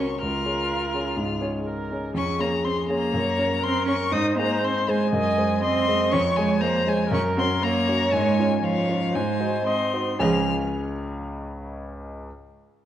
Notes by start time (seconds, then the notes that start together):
Already playing: C#2 C#4 F#4 A#4 C#5 C#6
0.21 C#2 F4 A#4 F6
0.45 C#4 G#4 C#5
0.94 C#4 G#4 C#5
1.17 G#2 G#4
1.41 C#4 G#4 C#5
1.67 A#4
1.91 C#4 G#4 C#5
2.14 F2 C#4 G#4 C#6
2.39 A#3 C#4 G#4 C#5 A#5
2.64 C4 C6
2.87 A#3 C#4 G#4 C#5 A#5
3.13 F#2 C#5
3.38 C#4 A#4 C#5
3.63 C4 A#4 C6
3.85 C#4 A#4 C#5 C#6
4.12 G#2 D#4 C5 D#6
4.37 G#3 A#3 G#4 C5 A#5
4.63 C4 C6
4.88 G#3 G#4 C5 G#5
5.11 F#2 D#5
5.37 G#3 G#4 C5
5.62 C4 D#5 C6
5.88 G#3 G#4 C5
6.12 F2 C#4 C#5 C#6
6.37 G#3 G#4 C#5 G#5
6.61 A#3 C5 A#5
6.87 G#3 G#4 C#5 G#5
7.10 F#2 C#4 A#4 C#6
7.37 C4 C#4 F#4 C#5 C6
7.62 A#3 C#5 A#5
7.88 C#4 F#4 C#5
8.12 G#2 G#3 G#5
8.39 C#4 F4 C#5
8.62 F3 C#5 F5
8.89 C#4 F4 C#5
9.14 G#2 G#3 C5 G#5
9.40 D#4 F#4 C5
9.65 C4 D#5 C6
9.93 D#4 F#4 C5
10.19 C#2 C#3 F3 C#4 G#4 C#5 G#5 F6